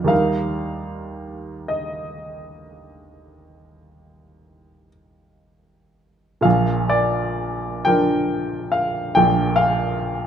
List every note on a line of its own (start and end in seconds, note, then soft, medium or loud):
0.00 6.38 D#2 soft
0.00 0.11 F2 soft
0.00 0.13 D4 soft
0.00 0.08 A#4 soft
0.00 0.08 F5 soft
0.00 0.13 G5 soft
0.06 6.39 G3 soft
0.06 6.39 D#4 soft
0.06 6.40 A#4 soft
0.06 1.68 F5 soft
1.68 4.89 D#5 soft
6.41 9.12 A#1 soft
6.41 9.10 A#2 soft
6.41 6.89 F5 medium
6.89 7.86 D5 medium
7.85 9.12 F3 soft
7.85 9.12 D4 soft
7.85 9.13 A#4 soft
7.85 8.73 G5 medium
8.72 9.15 F5 soft
9.15 10.27 A#1 soft
9.15 10.27 A#2 soft
9.15 9.56 G5 medium
9.56 10.27 F5 medium